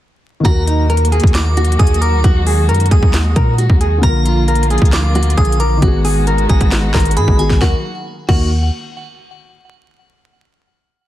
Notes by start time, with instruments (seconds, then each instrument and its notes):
0.40 felt piano D#3 A#3
0.45 808-style bass D#2, string section D#3 F#3 A#3 F#4, clean electric guitar F#4, felt piano F#4, synth bell A#5, kick, closed hi-hat
0.50 felt piano A#4
0.68 clean electric guitar D#4, closed hi-hat
0.90 clean electric guitar A#4, closed hi-hat
0.97 closed hi-hat
1.05 closed hi-hat
1.12 clean electric guitar G#4, closed hi-hat
1.20 808-style bass D#2, kick, closed hi-hat
1.27 closed hi-hat
1.34 synth bell D6, snare, clap, closed hi-hat
1.57 clean electric guitar F#4, closed hi-hat
1.64 closed hi-hat
1.72 closed hi-hat
1.79 808-style bass D#2, clean electric guitar G#4, synth bell D#6, kick, closed hi-hat
1.87 closed hi-hat
1.94 closed hi-hat
2.01 clean electric guitar A#4, synth bell D6, closed hi-hat
2.13 808-style bass D2
2.24 808-style bass D#2, string section G#3, clean electric guitar F#4, kick, closed hi-hat
2.47 clean electric guitar G#4, open hi-hat
2.69 808-style bass F#2, clean electric guitar A#4, closed hi-hat
2.75 closed hi-hat
2.80 closed hi-hat
2.86 closed hi-hat
2.91 808-style bass D#2, clean electric guitar G#4, synth bell D#6, kick, closed hi-hat
3.03 808-style bass D#2, kick
3.13 snare, clap, closed hi-hat
3.36 808-style bass A#2, clean electric guitar A#4, kick, closed hi-hat
3.58 clean electric guitar F#4, closed hi-hat
3.70 808-style bass D#2, kick
3.81 clean electric guitar G#4, closed hi-hat
3.98 felt piano D3 A#3
4.03 808-style bass A#1, string section D3 F3 A#3 F4, felt piano F4, clean electric guitar A#4, synth bell A#5, kick, closed hi-hat
4.08 felt piano A#4
4.26 clean electric guitar F4, closed hi-hat
4.48 clean electric guitar A#4, closed hi-hat
4.55 closed hi-hat
4.63 closed hi-hat
4.70 clean electric guitar G#4, closed hi-hat
4.78 808-style bass D2, kick, closed hi-hat
4.85 closed hi-hat
4.93 synth bell D6, snare, clap, closed hi-hat
5.15 clean electric guitar F#4, closed hi-hat
5.23 closed hi-hat
5.30 closed hi-hat
5.37 808-style bass A#1, clean electric guitar G#4, synth bell D#6, kick, closed hi-hat
5.45 closed hi-hat
5.52 closed hi-hat
5.60 clean electric guitar A#4, synth bell D6, closed hi-hat
5.77 felt piano D#3 B3
5.82 808-style bass G#1, string section D#3 G#3 B3 F#4, clean electric guitar F#4, felt piano F#4, kick, closed hi-hat
5.87 felt piano G#4
6.05 clean electric guitar G#4, open hi-hat
6.27 clean electric guitar A#4, closed hi-hat
6.38 closed hi-hat
6.49 808-style bass G#1, clean electric guitar G#4, synth bell A#5, kick, closed hi-hat
6.61 kick, closed hi-hat
6.72 snare, clap, closed hi-hat
6.94 808-style bass G#1, clean electric guitar A#4, kick, snare, clap, closed hi-hat
7.00 closed hi-hat
7.05 closed hi-hat
7.11 closed hi-hat
7.17 808-style bass G#2, clean electric guitar G#4, synth bell B5, closed hi-hat
7.28 808-style bass G#1, kick
7.36 felt piano D#3 B3 F#4, synth bell G#5, closed hi-hat
7.41 felt piano G#4
7.50 808-style bass G#1, kick, snare
7.61 808-style bass D#2, felt piano D#3 A#3 F#4 A#4, string section D#3 F#3 A#3 F#4, clean electric guitar F#4, synth bell F#5, kick, snare
8.28 808-style bass D#2, felt piano D#3 A#3 F#4 A#4, clean electric guitar F#4, synth bell F#5, kick, crash